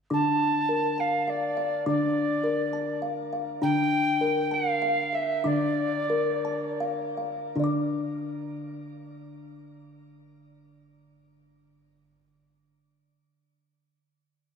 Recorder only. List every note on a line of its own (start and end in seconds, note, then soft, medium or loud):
0.14 1.02 A5 medium
1.00 1.31 F5 medium
1.30 1.87 D5 medium
1.88 3.01 D5 medium
3.63 4.55 G5 loud
4.54 5.16 F5 medium
5.15 5.49 E5 medium
5.47 6.82 D5 medium